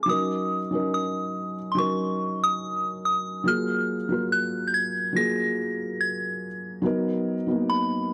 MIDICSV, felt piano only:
0, 0, Header, 1, 2, 480
1, 0, Start_track
1, 0, Key_signature, -6, "minor"
1, 0, Tempo, 845070
1, 44, Time_signature, 4, 2, 24, 8
1, 4621, End_track
2, 0, Start_track
2, 0, Title_t, "Felt piano"
2, 0, Program_c, 0, 0
2, 0, Control_c, 0, 64, 127
2, 33, Note_on_c, 0, 54, 72
2, 41, Note_on_c, 0, 61, 64
2, 48, Note_on_c, 0, 63, 64
2, 51, Control_c, 0, 64, 0
2, 56, Note_on_c, 0, 70, 80
2, 160, Control_c, 0, 64, 127
2, 322, Note_off_c, 0, 54, 0
2, 326, Note_off_c, 0, 61, 0
2, 329, Note_off_c, 0, 63, 0
2, 334, Note_off_c, 0, 70, 0
2, 402, Note_on_c, 0, 54, 68
2, 410, Note_on_c, 0, 61, 61
2, 418, Note_on_c, 0, 63, 64
2, 426, Note_on_c, 0, 70, 77
2, 874, Note_off_c, 0, 54, 0
2, 877, Note_off_c, 0, 61, 0
2, 882, Note_off_c, 0, 63, 0
2, 885, Note_off_c, 0, 70, 0
2, 993, Note_on_c, 0, 54, 72
2, 1001, Note_on_c, 0, 61, 65
2, 1009, Note_on_c, 0, 63, 62
2, 1017, Note_on_c, 0, 70, 82
2, 1748, Note_off_c, 0, 54, 0
2, 1752, Note_off_c, 0, 61, 0
2, 1756, Note_off_c, 0, 63, 0
2, 1760, Note_off_c, 0, 70, 0
2, 1953, Note_on_c, 0, 54, 71
2, 1960, Note_on_c, 0, 58, 66
2, 1968, Note_on_c, 0, 65, 65
2, 1972, Control_c, 0, 64, 0
2, 1976, Note_on_c, 0, 68, 75
2, 2072, Control_c, 0, 64, 127
2, 2242, Note_off_c, 0, 54, 0
2, 2246, Note_off_c, 0, 58, 0
2, 2250, Note_off_c, 0, 65, 0
2, 2253, Note_off_c, 0, 68, 0
2, 2322, Note_on_c, 0, 54, 75
2, 2329, Note_on_c, 0, 58, 66
2, 2338, Note_on_c, 0, 65, 65
2, 2345, Note_on_c, 0, 70, 77
2, 2794, Note_off_c, 0, 54, 0
2, 2797, Note_off_c, 0, 58, 0
2, 2802, Note_off_c, 0, 65, 0
2, 2805, Note_off_c, 0, 70, 0
2, 2912, Note_on_c, 0, 54, 71
2, 2920, Note_on_c, 0, 58, 69
2, 2928, Note_on_c, 0, 65, 65
2, 2936, Note_on_c, 0, 68, 82
2, 3667, Note_off_c, 0, 54, 0
2, 3671, Note_off_c, 0, 58, 0
2, 3675, Note_off_c, 0, 65, 0
2, 3679, Note_off_c, 0, 68, 0
2, 3873, Note_on_c, 0, 54, 89
2, 3880, Note_on_c, 0, 59, 81
2, 3888, Note_on_c, 0, 63, 77
2, 3892, Control_c, 0, 64, 0
2, 3895, Note_on_c, 0, 70, 94
2, 4009, Control_c, 0, 64, 127
2, 4162, Note_off_c, 0, 54, 0
2, 4165, Note_off_c, 0, 59, 0
2, 4170, Note_off_c, 0, 63, 0
2, 4173, Note_off_c, 0, 70, 0
2, 4242, Note_on_c, 0, 54, 67
2, 4249, Note_on_c, 0, 59, 64
2, 4258, Note_on_c, 0, 63, 62
2, 4265, Note_on_c, 0, 58, 79
2, 4621, Note_off_c, 0, 54, 0
2, 4621, Note_off_c, 0, 58, 0
2, 4621, Note_off_c, 0, 59, 0
2, 4621, Note_off_c, 0, 63, 0
2, 4621, End_track
0, 0, End_of_file